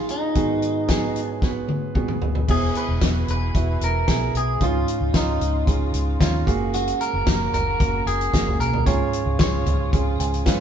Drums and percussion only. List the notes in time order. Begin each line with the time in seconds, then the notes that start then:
0.09 closed hi-hat
0.35 kick, closed hi-hat
0.62 closed hi-hat
0.88 kick, snare, closed hi-hat
1.16 closed hi-hat
1.42 kick, snare
1.68 high tom
1.95 kick, mid tom
2.08 mid tom
2.22 floor tom
2.35 floor tom
2.48 kick, crash
2.75 closed hi-hat
3.01 kick, snare, closed hi-hat
3.28 closed hi-hat
3.55 kick, closed hi-hat
3.81 closed hi-hat
4.08 kick, snare, closed hi-hat
4.35 closed hi-hat
4.61 kick, closed hi-hat
4.88 closed hi-hat
5.14 kick, snare, closed hi-hat
5.41 closed hi-hat
5.67 kick, closed hi-hat
5.94 closed hi-hat
6.21 kick, snare, closed hi-hat
6.47 kick, closed hi-hat
6.74 closed hi-hat
6.87 closed hi-hat
7.01 closed hi-hat
7.26 kick, snare, closed hi-hat
7.54 closed hi-hat, floor tom
7.80 kick, closed hi-hat
8.07 closed hi-hat
8.21 closed hi-hat
8.34 kick, snare, closed hi-hat
8.47 floor tom
8.61 closed hi-hat
8.74 floor tom
8.86 kick, closed hi-hat
9.13 closed hi-hat
9.39 kick, snare, closed hi-hat
9.66 closed hi-hat, floor tom
9.93 kick, closed hi-hat
10.20 closed hi-hat
10.34 closed hi-hat
10.46 kick, snare, closed hi-hat